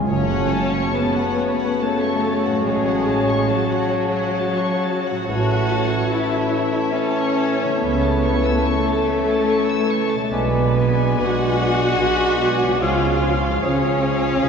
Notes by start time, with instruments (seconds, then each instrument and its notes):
Already playing: harp F#2 C#3 F3 F#3 F4 G#4 C#5 F5 G#5
0.00 harp C#4
0.04 harp A4, oboe C#5, violin section C#5
0.08 double bass section F#1, cello section F#2, timpani F#2, bassoon C#3, french horn section A3 C#4, viola section C#4, clarinet F#4, flute section A5
0.28 violin section F#5
0.51 violin section A5
0.72 violin section C#6
0.94 viola section B3, violin section B4 A5
1.15 violin section F#5
1.37 violin section C#5
1.58 violin section F#5
1.79 viola section A3, violin section A4 A5
2.01 violin section C#6
2.21 violin section A5
2.44 harp A2, violin section F#5
2.51 harp F#3
2.56 harp C#4
2.60 harp C#5
2.64 double bass section A1, cello section A2, french horn section F#3, viola section G#3, violin section G#4 C#5
2.86 violin section F#5
3.08 violin section A5
3.29 violin section C#6
3.49 viola section F#3, violin section F#4 A5
3.71 violin section F#5
3.93 violin section C#5
4.14 violin section F#5
4.36 violin section A5
4.57 violin section C#6
4.80 violin section A5
5.05 violin section F#5
5.11 harp A2
5.16 harp A3
5.20 harp C#4
5.25 double bass section A1, cello section A2, bassoon E3, french horn section A3 C#4, viola section F#4, harp C#5, violin section C#5 F#5, flute section A5
5.29 clarinet A4, oboe C#5
5.49 violin section E5
5.70 violin section A5
5.90 violin section C#6
6.11 viola section E4, violin section E5 A5
6.31 violin section E5
6.51 violin section C#5
6.73 violin section E5
6.95 viola section C#4, violin section C#5 A5
7.16 violin section C#6
7.37 violin section A5
7.59 violin section E5
7.64 harp C#3
7.69 harp A3
7.74 harp E4
7.81 double bass section C#2, cello section C#3, viola section B3, violin section B4 E5
8.01 violin section A5
8.23 violin section C#6
8.43 violin section E6
8.64 viola section A3, violin section A4 C#6
8.85 violin section A5
9.05 violin section E5
9.27 violin section A5
9.48 violin section C#6
9.68 violin section E6
9.89 violin section C#6
10.10 harp B2, violin section A5
10.18 harp G#3
10.23 harp G#4
10.27 double bass section B1, french horn section G#3, harp D5, oboe D5
10.31 cello section B2, bassoon G#3, viola section B3, french horn section D4, clarinet B4, violin section B4, flute section G#5
10.75 bassoon G#3, clarinet B4, oboe D5, violin section G#5, flute section G#5
11.20 double bass section B1, cello section B2, bassoon G#3, viola section F#4, clarinet B4, oboe D5, violin section F#5, flute section G#5
11.61 bassoon G#3, clarinet B4, oboe D5, violin section G#5, flute section G#5
11.99 double bass section B1, cello section B2, bassoon G#3, clarinet B4, oboe D5, flute section G#5
12.39 bassoon G#3, clarinet B4, oboe D5, flute section G#5, violin section G#5
12.63 harp C#3
12.68 harp G#3 F4
12.76 bassoon F3, french horn section F4, viola section F4, harp C#5, oboe C#5
12.80 double bass section C#2, cello section C#3, clarinet G#4, violin section F5, flute section G#5
13.21 bassoon F3, clarinet G#4, oboe C#5, violin section F5, flute section G#5
13.61 double bass section C#2, cello section C#3, bassoon F3, viola section C#4, clarinet G#4, oboe C#5, violin section C#5, flute section G#5
14.02 bassoon F3, clarinet G#4, oboe C#5, violin section F5, flute section G#5
14.42 double bass section C#2, cello section C#3, bassoon F3, clarinet G#4, oboe C#5, flute section G#5